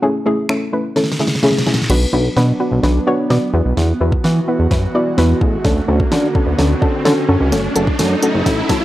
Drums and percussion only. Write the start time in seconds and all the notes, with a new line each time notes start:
0.49 finger snap
0.96 snare
1.04 snare
1.12 snare
1.19 snare
1.27 snare
1.35 snare
1.43 snare
1.51 snare
1.58 snare
1.66 snare
1.74 snare
1.82 snare
1.90 snare, crash
2.37 snare
2.84 snare
3.30 snare
3.77 snare
4.12 kick
4.24 snare
4.71 kick, snare
5.18 snare
5.41 kick
5.65 kick, snare
6.00 kick
6.12 snare
6.35 kick
6.59 snare
6.82 kick
7.05 snare
7.52 snare, closed hi-hat
7.76 closed hi-hat
7.87 kick
7.99 snare, closed hi-hat
8.22 closed hi-hat
8.46 kick, snare, closed hi-hat
8.69 kick, snare, closed hi-hat